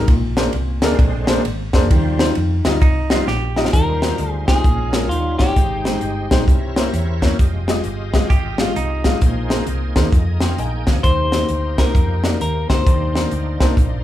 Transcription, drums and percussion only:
0.08 kick, ride
0.37 snare, ride
0.53 ride
0.82 snare, ride
0.99 kick, ride
1.27 snare, ride
1.45 ride
1.73 kick, snare, ride
1.91 kick, ride
2.19 snare, ride
2.35 ride
2.65 snare, ride
2.82 kick, ride
3.10 snare, ride
3.27 snare
3.56 snare
3.65 snare
3.73 kick, closed hi-hat
4.02 snare, closed hi-hat
4.18 closed hi-hat
4.48 kick, snare, closed hi-hat
4.64 kick, closed hi-hat
4.93 snare, closed hi-hat
5.11 closed hi-hat
5.39 kick, snare, closed hi-hat
5.56 kick, closed hi-hat
5.85 snare, closed hi-hat
6.01 closed hi-hat
6.31 kick, snare, closed hi-hat
6.48 kick, closed hi-hat
6.76 snare, closed hi-hat
6.94 closed hi-hat
7.22 kick, snare, closed hi-hat
7.39 kick, closed hi-hat
7.68 snare, closed hi-hat
7.84 closed hi-hat
8.14 kick, snare, closed hi-hat
8.30 kick, closed hi-hat
8.58 snare, closed hi-hat
8.76 closed hi-hat
9.04 kick, snare, closed hi-hat
9.21 kick, closed hi-hat
9.50 snare, closed hi-hat
9.67 closed hi-hat
9.96 kick, snare, closed hi-hat
10.12 kick, closed hi-hat
10.40 snare, closed hi-hat
10.58 closed hi-hat
10.87 kick, snare, closed hi-hat
11.04 kick, closed hi-hat
11.32 snare, closed hi-hat
11.49 closed hi-hat
11.78 kick, snare, closed hi-hat
11.95 kick, closed hi-hat
12.24 snare, closed hi-hat
12.41 closed hi-hat
12.70 kick, snare, closed hi-hat
12.86 kick, closed hi-hat
13.15 snare, closed hi-hat
13.31 closed hi-hat
13.60 kick, snare, closed hi-hat
13.77 kick, closed hi-hat

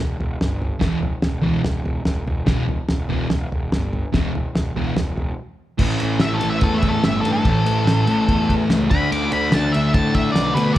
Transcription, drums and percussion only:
0.20 floor tom
0.41 snare, floor tom
0.62 floor tom
0.81 kick, snare, floor tom
1.03 floor tom
1.22 snare, floor tom
1.43 floor tom
1.64 snare, floor tom
1.85 floor tom
2.05 snare, floor tom
2.27 floor tom
2.47 kick, snare, floor tom
2.68 floor tom
2.89 snare, floor tom
3.10 floor tom
3.30 snare, floor tom
3.52 floor tom
3.72 snare, floor tom
3.93 floor tom
4.14 kick, snare, floor tom
4.35 floor tom
4.55 snare, floor tom
4.76 floor tom
4.97 snare, floor tom
5.17 floor tom
5.79 kick, crash
6.00 ride
6.20 snare, ride
6.41 ride
6.61 kick, ride
6.82 kick, ride
7.04 snare, ride
7.25 ride
7.45 kick, ride
7.66 ride
7.87 snare, ride
8.07 ride
8.29 kick, ride
8.50 kick, ride
8.70 snare, ride
8.91 kick, ride
9.12 ride
9.32 ride
9.52 snare, ride
9.74 ride
9.94 kick, ride
10.14 kick, ride
10.35 snare, ride
10.57 ride

